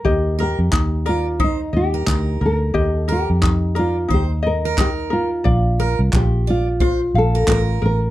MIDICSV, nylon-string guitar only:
0, 0, Header, 1, 2, 480
1, 0, Start_track
1, 0, Tempo, 674916
1, 40, Time_signature, 4, 2, 24, 8
1, 5764, End_track
2, 0, Start_track
2, 0, Title_t, "Nylon-string guitar"
2, 0, Program_c, 0, 24
2, 0, Note_on_c, 0, 70, 81
2, 297, Note_off_c, 0, 70, 0
2, 300, Note_on_c, 0, 67, 71
2, 775, Note_on_c, 0, 65, 69
2, 785, Note_off_c, 0, 67, 0
2, 1015, Note_off_c, 0, 65, 0
2, 1023, Note_on_c, 0, 63, 73
2, 1236, Note_off_c, 0, 63, 0
2, 1255, Note_on_c, 0, 67, 73
2, 1743, Note_off_c, 0, 67, 0
2, 1747, Note_on_c, 0, 70, 81
2, 2088, Note_off_c, 0, 70, 0
2, 2088, Note_on_c, 0, 69, 81
2, 2217, Note_off_c, 0, 69, 0
2, 2220, Note_on_c, 0, 67, 71
2, 2696, Note_on_c, 0, 65, 69
2, 2705, Note_off_c, 0, 67, 0
2, 2913, Note_off_c, 0, 65, 0
2, 2944, Note_on_c, 0, 67, 77
2, 3006, Note_off_c, 0, 67, 0
2, 3176, Note_on_c, 0, 70, 75
2, 3414, Note_off_c, 0, 70, 0
2, 3417, Note_on_c, 0, 67, 81
2, 3480, Note_off_c, 0, 67, 0
2, 3647, Note_on_c, 0, 65, 77
2, 4381, Note_on_c, 0, 67, 72
2, 4385, Note_off_c, 0, 65, 0
2, 4618, Note_off_c, 0, 67, 0
2, 4624, Note_on_c, 0, 65, 85
2, 5106, Note_off_c, 0, 65, 0
2, 5107, Note_on_c, 0, 69, 86
2, 5339, Note_off_c, 0, 69, 0
2, 5342, Note_on_c, 0, 70, 77
2, 5404, Note_off_c, 0, 70, 0
2, 5587, Note_on_c, 0, 70, 90
2, 5764, Note_off_c, 0, 70, 0
2, 5764, End_track
0, 0, End_of_file